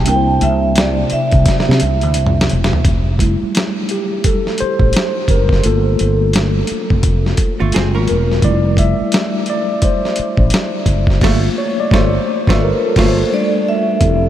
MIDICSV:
0, 0, Header, 1, 7, 480
1, 0, Start_track
1, 0, Key_signature, -1, "major"
1, 0, Tempo, 697674
1, 37, Time_signature, 4, 2, 24, 8
1, 9832, End_track
2, 0, Start_track
2, 0, Title_t, "Vibraphone"
2, 0, Program_c, 0, 11
2, 58, Note_on_c, 0, 79, 91
2, 271, Note_off_c, 0, 79, 0
2, 295, Note_on_c, 0, 76, 83
2, 510, Note_off_c, 0, 76, 0
2, 537, Note_on_c, 0, 74, 77
2, 774, Note_off_c, 0, 74, 0
2, 774, Note_on_c, 0, 76, 76
2, 1698, Note_off_c, 0, 76, 0
2, 8938, Note_on_c, 0, 72, 74
2, 9174, Note_off_c, 0, 72, 0
2, 9175, Note_on_c, 0, 74, 89
2, 9413, Note_off_c, 0, 74, 0
2, 9415, Note_on_c, 0, 76, 83
2, 9832, Note_off_c, 0, 76, 0
2, 9832, End_track
3, 0, Start_track
3, 0, Title_t, "Tine electric piano"
3, 0, Program_c, 1, 4
3, 0, Control_c, 1, 64, 127
3, 39, Note_on_c, 1, 48, 62
3, 44, Note_on_c, 1, 58, 54
3, 45, Control_c, 1, 64, 0
3, 50, Note_on_c, 1, 62, 57
3, 58, Note_on_c, 1, 64, 59
3, 62, Note_on_c, 1, 70, 55
3, 104, Note_off_c, 1, 70, 0
3, 109, Note_on_c, 1, 72, 66
3, 176, Control_c, 1, 64, 127
3, 1930, Note_off_c, 1, 48, 0
3, 1933, Note_off_c, 1, 58, 0
3, 1936, Note_off_c, 1, 62, 0
3, 1940, Note_off_c, 1, 64, 0
3, 1965, Note_off_c, 1, 72, 0
3, 1965, Control_c, 1, 64, 0
3, 2070, Control_c, 1, 64, 127
3, 2204, Note_on_c, 1, 55, 49
3, 2209, Note_on_c, 1, 57, 41
3, 2213, Note_on_c, 1, 64, 55
3, 2539, Note_off_c, 1, 55, 0
3, 2541, Note_off_c, 1, 57, 0
3, 2543, Note_off_c, 1, 64, 0
3, 2691, Note_on_c, 1, 67, 76
3, 2931, Note_off_c, 1, 67, 0
3, 2932, Note_on_c, 1, 69, 81
3, 3168, Note_on_c, 1, 72, 102
3, 3172, Note_off_c, 1, 69, 0
3, 3651, Note_on_c, 1, 70, 84
3, 3657, Note_off_c, 1, 72, 0
3, 3756, Note_off_c, 1, 70, 0
3, 3883, Note_on_c, 1, 57, 53
3, 3887, Control_c, 1, 64, 0
3, 3887, Note_on_c, 1, 58, 48
3, 3890, Note_on_c, 1, 65, 54
3, 3892, Note_on_c, 1, 69, 79
3, 3989, Control_c, 1, 64, 127
3, 4572, Note_off_c, 1, 57, 0
3, 4574, Note_off_c, 1, 58, 0
3, 4576, Note_off_c, 1, 65, 0
3, 4577, Note_off_c, 1, 69, 0
3, 5320, Note_on_c, 1, 56, 55
3, 5323, Note_on_c, 1, 58, 51
3, 5327, Control_c, 1, 64, 0
3, 5327, Note_on_c, 1, 65, 61
3, 5457, Control_c, 1, 64, 127
3, 5567, Note_on_c, 1, 70, 85
3, 5672, Note_off_c, 1, 70, 0
3, 5775, Note_off_c, 1, 56, 0
3, 5776, Note_off_c, 1, 58, 0
3, 5778, Note_off_c, 1, 65, 0
3, 5802, Note_on_c, 1, 55, 52
3, 5806, Control_c, 1, 64, 0
3, 5808, Note_on_c, 1, 57, 50
3, 5810, Note_on_c, 1, 74, 96
3, 5812, Note_on_c, 1, 64, 61
3, 5915, Control_c, 1, 64, 127
3, 6027, Note_off_c, 1, 74, 0
3, 6046, Note_on_c, 1, 76, 95
3, 6492, Note_off_c, 1, 55, 0
3, 6495, Note_off_c, 1, 57, 0
3, 6497, Note_off_c, 1, 64, 0
3, 6534, Note_on_c, 1, 74, 95
3, 6536, Note_off_c, 1, 76, 0
3, 6772, Note_off_c, 1, 74, 0
3, 6772, Note_on_c, 1, 72, 83
3, 7457, Note_off_c, 1, 72, 0
3, 7725, Control_c, 1, 64, 0
3, 7725, Note_on_c, 1, 57, 51
3, 7728, Note_on_c, 1, 58, 49
3, 7733, Note_on_c, 1, 65, 60
3, 7841, Control_c, 1, 64, 127
3, 7968, Note_on_c, 1, 73, 91
3, 8059, Note_off_c, 1, 57, 0
3, 8061, Note_off_c, 1, 58, 0
3, 8063, Note_off_c, 1, 65, 0
3, 8111, Note_off_c, 1, 73, 0
3, 8117, Note_on_c, 1, 74, 94
3, 8198, Note_off_c, 1, 74, 0
3, 8214, Note_on_c, 1, 72, 91
3, 8599, Note_on_c, 1, 71, 88
3, 8601, Note_off_c, 1, 72, 0
3, 8662, Note_on_c, 1, 69, 68
3, 8663, Note_off_c, 1, 71, 0
3, 8681, Note_off_c, 1, 69, 0
3, 8694, Note_on_c, 1, 70, 89
3, 8821, Note_off_c, 1, 70, 0
3, 8841, Note_on_c, 1, 69, 83
3, 8929, Note_on_c, 1, 57, 53
3, 8932, Note_on_c, 1, 58, 48
3, 8934, Note_on_c, 1, 65, 53
3, 9140, Note_off_c, 1, 57, 0
3, 9141, Note_off_c, 1, 58, 0
3, 9142, Note_off_c, 1, 65, 0
3, 9165, Control_c, 1, 64, 0
3, 9167, Note_on_c, 1, 55, 57
3, 9171, Note_on_c, 1, 57, 56
3, 9175, Note_on_c, 1, 62, 65
3, 9271, Control_c, 1, 64, 127
3, 9618, Note_off_c, 1, 55, 0
3, 9619, Note_off_c, 1, 69, 0
3, 9620, Note_off_c, 1, 57, 0
3, 9622, Note_off_c, 1, 62, 0
3, 9634, Note_on_c, 1, 53, 58
3, 9640, Note_on_c, 1, 60, 55
3, 9644, Control_c, 1, 64, 0
3, 9648, Note_on_c, 1, 64, 55
3, 9654, Note_on_c, 1, 67, 52
3, 9660, Note_on_c, 1, 69, 65
3, 9758, Control_c, 1, 64, 127
3, 9832, Note_off_c, 1, 53, 0
3, 9832, Note_off_c, 1, 60, 0
3, 9832, Note_off_c, 1, 64, 0
3, 9832, Note_off_c, 1, 67, 0
3, 9832, Note_off_c, 1, 69, 0
3, 9832, End_track
4, 0, Start_track
4, 0, Title_t, "Hollow-body jazz guitar"
4, 0, Program_c, 2, 26
4, 5231, Note_on_c, 2, 65, 70
4, 5236, Note_on_c, 2, 57, 58
4, 5317, Note_off_c, 2, 65, 0
4, 5320, Note_off_c, 2, 57, 0
4, 5327, Note_on_c, 2, 68, 85
4, 5334, Note_on_c, 2, 60, 72
4, 5460, Note_off_c, 2, 68, 0
4, 5463, Note_off_c, 2, 60, 0
4, 5467, Note_on_c, 2, 70, 74
4, 5471, Note_on_c, 2, 61, 61
4, 5783, Note_off_c, 2, 70, 0
4, 5785, Note_off_c, 2, 61, 0
4, 7728, Note_on_c, 2, 65, 97
4, 7732, Note_on_c, 2, 57, 97
4, 7895, Note_off_c, 2, 65, 0
4, 7897, Note_off_c, 2, 57, 0
4, 8208, Note_on_c, 2, 65, 84
4, 8212, Note_on_c, 2, 57, 87
4, 8375, Note_off_c, 2, 65, 0
4, 8377, Note_off_c, 2, 57, 0
4, 8592, Note_on_c, 2, 65, 94
4, 8596, Note_on_c, 2, 57, 92
4, 8742, Note_off_c, 2, 65, 0
4, 8745, Note_off_c, 2, 57, 0
4, 8927, Note_on_c, 2, 65, 96
4, 8931, Note_on_c, 2, 57, 100
4, 9094, Note_off_c, 2, 65, 0
4, 9097, Note_off_c, 2, 57, 0
4, 9832, End_track
5, 0, Start_track
5, 0, Title_t, "Fretless electric bass"
5, 0, Program_c, 3, 35
5, 49, Note_on_c, 3, 36, 96
5, 256, Note_off_c, 3, 36, 0
5, 288, Note_on_c, 3, 36, 97
5, 707, Note_off_c, 3, 36, 0
5, 921, Note_on_c, 3, 36, 84
5, 997, Note_off_c, 3, 36, 0
5, 1161, Note_on_c, 3, 48, 89
5, 1236, Note_off_c, 3, 48, 0
5, 1252, Note_on_c, 3, 36, 84
5, 1397, Note_off_c, 3, 36, 0
5, 1397, Note_on_c, 3, 38, 84
5, 1494, Note_off_c, 3, 38, 0
5, 1494, Note_on_c, 3, 36, 87
5, 1699, Note_off_c, 3, 36, 0
5, 1738, Note_on_c, 3, 28, 81
5, 1857, Note_off_c, 3, 28, 0
5, 1967, Note_on_c, 3, 29, 91
5, 2303, Note_off_c, 3, 29, 0
5, 3306, Note_on_c, 3, 33, 77
5, 3388, Note_off_c, 3, 33, 0
5, 3639, Note_on_c, 3, 30, 85
5, 3850, Note_off_c, 3, 30, 0
5, 3890, Note_on_c, 3, 31, 97
5, 4096, Note_off_c, 3, 31, 0
5, 4133, Note_on_c, 3, 31, 92
5, 4550, Note_off_c, 3, 31, 0
5, 4758, Note_on_c, 3, 29, 87
5, 5047, Note_off_c, 3, 29, 0
5, 5238, Note_on_c, 3, 31, 84
5, 5315, Note_off_c, 3, 31, 0
5, 5337, Note_on_c, 3, 30, 97
5, 5482, Note_off_c, 3, 30, 0
5, 5482, Note_on_c, 3, 32, 85
5, 5557, Note_off_c, 3, 32, 0
5, 5577, Note_on_c, 3, 28, 82
5, 5780, Note_off_c, 3, 28, 0
5, 5803, Note_on_c, 3, 29, 105
5, 6140, Note_off_c, 3, 29, 0
5, 7144, Note_on_c, 3, 33, 85
5, 7227, Note_off_c, 3, 33, 0
5, 7479, Note_on_c, 3, 30, 90
5, 7690, Note_off_c, 3, 30, 0
5, 7723, Note_on_c, 3, 31, 102
5, 7892, Note_off_c, 3, 31, 0
5, 8204, Note_on_c, 3, 31, 99
5, 8372, Note_off_c, 3, 31, 0
5, 8591, Note_on_c, 3, 31, 96
5, 8742, Note_off_c, 3, 31, 0
5, 8925, Note_on_c, 3, 31, 96
5, 9093, Note_off_c, 3, 31, 0
5, 9647, Note_on_c, 3, 29, 89
5, 9832, Note_off_c, 3, 29, 0
5, 9832, End_track
6, 0, Start_track
6, 0, Title_t, "Muted fretless electric bass strokes"
6, 772, Note_on_c, 9, 29, 46
6, 841, Note_off_c, 9, 29, 0
6, 2358, Note_on_c, 9, 29, 42
6, 2427, Note_off_c, 9, 29, 0
6, 3175, Note_on_c, 9, 29, 43
6, 3243, Note_off_c, 9, 29, 0
6, 4617, Note_on_c, 9, 29, 42
6, 4685, Note_off_c, 9, 29, 0
6, 5084, Note_on_c, 9, 29, 44
6, 5153, Note_off_c, 9, 29, 0
6, 6199, Note_on_c, 9, 29, 42
6, 6268, Note_off_c, 9, 29, 0
6, 7011, Note_on_c, 9, 29, 43
6, 7080, Note_off_c, 9, 29, 0
6, 9832, End_track
7, 0, Start_track
7, 0, Title_t, "Drums"
7, 39, Note_on_c, 9, 42, 72
7, 108, Note_off_c, 9, 42, 0
7, 283, Note_on_c, 9, 42, 69
7, 352, Note_off_c, 9, 42, 0
7, 520, Note_on_c, 9, 42, 79
7, 536, Note_on_c, 9, 38, 113
7, 588, Note_off_c, 9, 42, 0
7, 604, Note_off_c, 9, 38, 0
7, 755, Note_on_c, 9, 42, 59
7, 823, Note_off_c, 9, 42, 0
7, 905, Note_on_c, 9, 42, 41
7, 911, Note_on_c, 9, 36, 89
7, 974, Note_off_c, 9, 42, 0
7, 980, Note_off_c, 9, 36, 0
7, 1002, Note_on_c, 9, 42, 93
7, 1003, Note_on_c, 9, 36, 89
7, 1021, Note_on_c, 9, 38, 56
7, 1071, Note_off_c, 9, 36, 0
7, 1071, Note_off_c, 9, 42, 0
7, 1090, Note_off_c, 9, 38, 0
7, 1101, Note_on_c, 9, 38, 53
7, 1170, Note_off_c, 9, 38, 0
7, 1179, Note_on_c, 9, 38, 61
7, 1236, Note_on_c, 9, 42, 66
7, 1248, Note_off_c, 9, 38, 0
7, 1305, Note_off_c, 9, 42, 0
7, 1386, Note_on_c, 9, 42, 47
7, 1455, Note_off_c, 9, 42, 0
7, 1472, Note_on_c, 9, 42, 78
7, 1541, Note_off_c, 9, 42, 0
7, 1558, Note_on_c, 9, 45, 68
7, 1627, Note_off_c, 9, 45, 0
7, 1659, Note_on_c, 9, 38, 89
7, 1717, Note_on_c, 9, 42, 59
7, 1728, Note_off_c, 9, 38, 0
7, 1785, Note_off_c, 9, 42, 0
7, 1818, Note_on_c, 9, 38, 89
7, 1879, Note_on_c, 9, 43, 79
7, 1887, Note_off_c, 9, 38, 0
7, 1948, Note_off_c, 9, 43, 0
7, 1958, Note_on_c, 9, 36, 97
7, 1959, Note_on_c, 9, 42, 66
7, 2027, Note_off_c, 9, 36, 0
7, 2028, Note_off_c, 9, 42, 0
7, 2196, Note_on_c, 9, 36, 88
7, 2202, Note_on_c, 9, 42, 67
7, 2264, Note_off_c, 9, 36, 0
7, 2271, Note_off_c, 9, 42, 0
7, 2441, Note_on_c, 9, 42, 78
7, 2457, Note_on_c, 9, 38, 109
7, 2509, Note_off_c, 9, 42, 0
7, 2525, Note_off_c, 9, 38, 0
7, 2675, Note_on_c, 9, 42, 57
7, 2743, Note_off_c, 9, 42, 0
7, 2917, Note_on_c, 9, 42, 86
7, 2920, Note_on_c, 9, 36, 92
7, 2986, Note_off_c, 9, 42, 0
7, 2989, Note_off_c, 9, 36, 0
7, 3075, Note_on_c, 9, 38, 31
7, 3144, Note_off_c, 9, 38, 0
7, 3149, Note_on_c, 9, 42, 65
7, 3218, Note_off_c, 9, 42, 0
7, 3299, Note_on_c, 9, 36, 87
7, 3368, Note_off_c, 9, 36, 0
7, 3390, Note_on_c, 9, 42, 77
7, 3416, Note_on_c, 9, 38, 98
7, 3459, Note_off_c, 9, 42, 0
7, 3485, Note_off_c, 9, 38, 0
7, 3632, Note_on_c, 9, 36, 82
7, 3636, Note_on_c, 9, 42, 61
7, 3701, Note_off_c, 9, 36, 0
7, 3705, Note_off_c, 9, 42, 0
7, 3778, Note_on_c, 9, 36, 84
7, 3802, Note_on_c, 9, 38, 32
7, 3846, Note_off_c, 9, 36, 0
7, 3871, Note_off_c, 9, 38, 0
7, 3877, Note_on_c, 9, 42, 66
7, 3946, Note_off_c, 9, 42, 0
7, 4122, Note_on_c, 9, 42, 68
7, 4191, Note_off_c, 9, 42, 0
7, 4358, Note_on_c, 9, 42, 79
7, 4374, Note_on_c, 9, 38, 109
7, 4427, Note_off_c, 9, 42, 0
7, 4442, Note_off_c, 9, 38, 0
7, 4591, Note_on_c, 9, 42, 62
7, 4660, Note_off_c, 9, 42, 0
7, 4749, Note_on_c, 9, 36, 89
7, 4818, Note_off_c, 9, 36, 0
7, 4837, Note_on_c, 9, 42, 88
7, 4839, Note_on_c, 9, 36, 88
7, 4906, Note_off_c, 9, 42, 0
7, 4908, Note_off_c, 9, 36, 0
7, 4998, Note_on_c, 9, 38, 31
7, 5066, Note_off_c, 9, 38, 0
7, 5073, Note_on_c, 9, 42, 67
7, 5076, Note_on_c, 9, 36, 83
7, 5142, Note_off_c, 9, 42, 0
7, 5145, Note_off_c, 9, 36, 0
7, 5313, Note_on_c, 9, 42, 78
7, 5339, Note_on_c, 9, 38, 95
7, 5382, Note_off_c, 9, 42, 0
7, 5408, Note_off_c, 9, 38, 0
7, 5556, Note_on_c, 9, 42, 56
7, 5624, Note_off_c, 9, 42, 0
7, 5721, Note_on_c, 9, 38, 31
7, 5790, Note_off_c, 9, 38, 0
7, 5795, Note_on_c, 9, 36, 95
7, 5796, Note_on_c, 9, 42, 72
7, 5864, Note_off_c, 9, 36, 0
7, 5864, Note_off_c, 9, 42, 0
7, 6033, Note_on_c, 9, 36, 86
7, 6041, Note_on_c, 9, 42, 72
7, 6102, Note_off_c, 9, 36, 0
7, 6110, Note_off_c, 9, 42, 0
7, 6274, Note_on_c, 9, 42, 87
7, 6289, Note_on_c, 9, 38, 112
7, 6342, Note_off_c, 9, 42, 0
7, 6358, Note_off_c, 9, 38, 0
7, 6508, Note_on_c, 9, 42, 59
7, 6577, Note_off_c, 9, 42, 0
7, 6755, Note_on_c, 9, 42, 90
7, 6758, Note_on_c, 9, 36, 95
7, 6823, Note_off_c, 9, 42, 0
7, 6827, Note_off_c, 9, 36, 0
7, 6916, Note_on_c, 9, 38, 34
7, 6985, Note_off_c, 9, 38, 0
7, 6988, Note_on_c, 9, 42, 64
7, 7057, Note_off_c, 9, 42, 0
7, 7137, Note_on_c, 9, 36, 90
7, 7206, Note_off_c, 9, 36, 0
7, 7225, Note_on_c, 9, 42, 76
7, 7251, Note_on_c, 9, 38, 93
7, 7294, Note_off_c, 9, 42, 0
7, 7320, Note_off_c, 9, 38, 0
7, 7471, Note_on_c, 9, 36, 87
7, 7472, Note_on_c, 9, 42, 61
7, 7540, Note_off_c, 9, 36, 0
7, 7541, Note_off_c, 9, 42, 0
7, 7616, Note_on_c, 9, 36, 84
7, 7639, Note_on_c, 9, 38, 32
7, 7685, Note_off_c, 9, 36, 0
7, 7708, Note_off_c, 9, 38, 0
7, 7714, Note_on_c, 9, 49, 74
7, 7716, Note_on_c, 9, 36, 106
7, 7734, Note_on_c, 9, 38, 97
7, 7783, Note_off_c, 9, 49, 0
7, 7785, Note_off_c, 9, 36, 0
7, 7803, Note_off_c, 9, 38, 0
7, 8196, Note_on_c, 9, 36, 112
7, 8212, Note_on_c, 9, 38, 106
7, 8265, Note_off_c, 9, 36, 0
7, 8281, Note_off_c, 9, 38, 0
7, 8582, Note_on_c, 9, 36, 107
7, 8601, Note_on_c, 9, 38, 105
7, 8651, Note_off_c, 9, 36, 0
7, 8670, Note_off_c, 9, 38, 0
7, 8916, Note_on_c, 9, 49, 80
7, 8918, Note_on_c, 9, 36, 112
7, 8936, Note_on_c, 9, 38, 104
7, 8985, Note_off_c, 9, 49, 0
7, 8987, Note_off_c, 9, 36, 0
7, 9004, Note_off_c, 9, 38, 0
7, 9636, Note_on_c, 9, 42, 67
7, 9638, Note_on_c, 9, 36, 93
7, 9705, Note_off_c, 9, 42, 0
7, 9706, Note_off_c, 9, 36, 0
7, 9832, End_track
0, 0, End_of_file